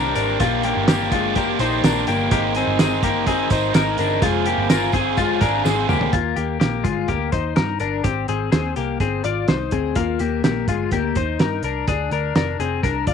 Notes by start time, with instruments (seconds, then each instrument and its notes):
Already playing: picked electric bass C2, overdriven electric guitar G3 C4 D4 G4, clean electric guitar D4 A#4
0.15 picked electric bass G#1, clean electric guitar D4 A#4, closed hi-hat, tambourine
0.40 picked electric bass A#1, overdriven electric guitar A#2 D3 F3 A#3 D4 G4, clean electric guitar A#3 F4, kick, closed hi-hat, tambourine
0.63 clean electric guitar A#3 G4, closed hi-hat
0.77 picked electric bass G1
0.87 overdriven electric guitar F3 A#3 D4 G4, clean electric guitar A#3 G4, snare, closed hi-hat, tambourine
1.11 overdriven electric guitar F3 A#3 D4 G4, clean electric guitar G#3 F4, kick, closed hi-hat, tambourine
1.35 overdriven electric guitar F3 A#3 D4 G4, clean electric guitar A#3 G4, kick, closed hi-hat, tambourine
1.59 picked electric bass A#1, overdriven electric guitar F3 A#3 D4 G4, clean electric guitar D#4 C5, closed hi-hat, tambourine
1.84 picked electric bass A#1, overdriven electric guitar F3 A#3 D4 G4, clean electric guitar D4 A#4, snare, closed hi-hat, tambourine
2.07 picked electric bass G1, clean electric guitar A#3 G4, closed hi-hat, tambourine
2.31 picked electric bass G#1, overdriven electric guitar G#3 C4 D#4 A#4, clean electric guitar A#3 G4, kick, closed hi-hat, tambourine
2.55 clean electric guitar C4 G#4, closed hi-hat, tambourine
2.67 picked electric bass G1
2.79 overdriven electric guitar G#3 C4 D#4 A#4, clean electric guitar C4 G#4, snare, closed hi-hat, tambourine
3.02 clean electric guitar A#3 G4, overdriven electric guitar C4 D#4 A#4, kick, closed hi-hat, tambourine
3.26 overdriven electric guitar G#3 C4 D#4 A#4, clean electric guitar C4 G#4, kick, closed hi-hat, tambourine
3.50 picked electric bass G#1, overdriven electric guitar C4 D#4 A#4, clean electric guitar D#4 C5, kick, closed hi-hat, tambourine
3.74 picked electric bass G#1, overdriven electric guitar G#3 C4 D#4 A#4, clean electric guitar D#4 A#4, snare, closed hi-hat, tambourine
3.98 picked electric bass G1, clean electric guitar D4 A#4, closed hi-hat, tambourine
4.22 picked electric bass F1, overdriven electric guitar F3 C4 F4 G#4, clean electric guitar G#3 F4, kick, closed hi-hat, tambourine
4.45 clean electric guitar A#3 G4, closed hi-hat
4.58 picked electric bass G1
4.70 overdriven electric guitar F3 C4 F4 G#4, clean electric guitar F4 A#4, snare, closed hi-hat, tambourine
4.92 clean electric guitar C4 G#4, overdriven electric guitar C4 F4 G#4, kick, closed hi-hat, tambourine
5.17 overdriven electric guitar F3 C4 F4 G#4, clean electric guitar G#3 F4, kick, closed hi-hat, tambourine
5.41 picked electric bass G#1, overdriven electric guitar C4 F4 G#4, clean electric guitar D4 A#4, kick, closed hi-hat, tambourine
5.65 picked electric bass G#1, overdriven electric guitar F3 C4 F4 G#4, clean electric guitar C4 G#4, snare, tambourine
5.89 picked electric bass D2, clean electric guitar A#3 G4, mid tom, tambourine
6.01 floor tom
6.13 picked electric bass D#2, clean electric guitar A#3 F4, kick, closed hi-hat
6.36 picked electric bass D#2, clean electric guitar A#3 G4, closed hi-hat
6.60 picked electric bass A#1, clean electric guitar A#3 G4, snare, closed hi-hat
6.84 picked electric bass G1, clean electric guitar G#3 F4, kick, closed hi-hat
7.08 picked electric bass D2, clean electric guitar A#3 G4, kick, closed hi-hat
7.32 picked electric bass D#2, clean electric guitar D#4 C5, kick, closed hi-hat
7.56 picked electric bass G2, clean electric guitar D#4 A#4, snare, closed hi-hat
7.80 picked electric bass G1, clean electric guitar D4 A#4, closed hi-hat
8.04 picked electric bass G#1, clean electric guitar C4 G4, kick, closed hi-hat
8.28 picked electric bass G#1, clean electric guitar C4 G#4, closed hi-hat
8.52 picked electric bass D#2, clean electric guitar C4 G#4, snare, closed hi-hat
8.76 picked electric bass C2, clean electric guitar A#3 G4, closed hi-hat
9.00 picked electric bass G1, clean electric guitar C4 G#4, kick, closed hi-hat
9.24 picked electric bass G#1, clean electric guitar F4 D5, closed hi-hat
9.48 picked electric bass C2, clean electric guitar D#4 C5, snare, closed hi-hat
9.71 picked electric bass D2, clean electric guitar C4 G#4, kick, closed hi-hat
9.95 picked electric bass D#2, clean electric guitar A#3 F4, kick, closed hi-hat
10.19 picked electric bass D#2, clean electric guitar A#3 G4, closed hi-hat
10.44 picked electric bass A#1, clean electric guitar A#3 G4, snare, closed hi-hat
10.67 picked electric bass G1, clean electric guitar G#3 F4, kick, closed hi-hat
10.91 picked electric bass D2, clean electric guitar A#3 G4, kick, closed hi-hat
11.15 picked electric bass D#2, clean electric guitar D#4 C5, kick, closed hi-hat
11.39 picked electric bass G2, clean electric guitar D#4 A#4, snare, closed hi-hat
11.63 picked electric bass C2, clean electric guitar D4 A#4, closed hi-hat
11.87 picked electric bass D2, clean electric guitar D4 G#4, kick, closed hi-hat
12.11 picked electric bass D2, clean electric guitar D4 A#4, closed hi-hat
12.35 picked electric bass F1, clean electric guitar D4 A#4, snare, closed hi-hat
12.59 picked electric bass F1, clean electric guitar C4 G#4, closed hi-hat
12.83 picked electric bass C2, clean electric guitar D4 A#4, kick, closed hi-hat
13.07 picked electric bass D2, clean electric guitar F4 D5, kick, closed hi-hat